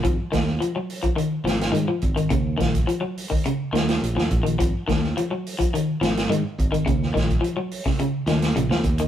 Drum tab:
HH |x-x-x-oxx-xxx-xx|x-xxx-o-x-xxx-xx|x-x-x-oxx-xxx-xx|x-xxx-o-x-xxx-xx|
SD |--oo------oo----|--o-------oo-o--|--oo------oo----|-oo----o--oo-o--|
BD |o-o----o------o-|o-oo---o------o-|o-o----o------o-|o-oo---o------o-|